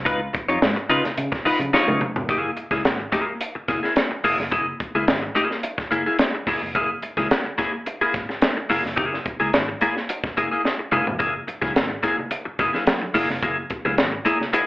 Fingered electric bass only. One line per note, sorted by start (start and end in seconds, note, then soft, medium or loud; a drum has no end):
0.06 0.26 C#2 loud
0.49 0.59 F2 medium
0.62 0.72 G#2 medium
0.89 1.00 C#3 loud
1.18 1.28 C#3 loud
1.45 muted fingered electric bass stroke soft
1.59 1.69 C#3 medium
1.88 1.97 C#3 medium
2.15 2.25 F1 medium
2.29 2.49 F#1 loud
2.71 2.81 C#2 medium
2.85 3.05 G#1 medium
3.55 muted fingered electric bass stroke soft
3.68 3.79 F#1 medium
4.24 4.35 F#1 medium
4.39 4.49 F1 medium
4.52 4.72 F#1 loud
4.95 5.04 C#2 loud
5.08 5.28 G#1 medium
5.78 muted fingered electric bass stroke soft
5.92 6.02 F#1 medium
6.47 6.58 F#1 medium
6.62 6.75 F1 medium
6.75 6.95 F#1 loud
7.17 7.27 C#2 medium
8.01 muted fingered electric bass stroke soft
8.14 8.25 G#1 medium
8.70 8.81 F#1 medium
8.85 8.94 F1 medium
8.98 9.18 F#1 loud
9.41 9.50 C#2 medium
9.54 9.74 G#1 medium
10.24 muted fingered electric bass stroke soft
10.37 10.48 F#1 medium
10.93 11.03 F#1 medium
11.07 11.17 F1 medium
11.20 11.40 F#1 loud
11.62 11.72 C#2 medium
11.76 11.96 G#1 loud
12.47 muted fingered electric bass stroke soft
12.59 12.70 F#1 loud
13.15 13.25 F#1 medium
13.30 13.39 F1 medium
13.43 13.63 F#1 loud
13.86 13.95 C#2 loud
13.99 14.18 G#1 medium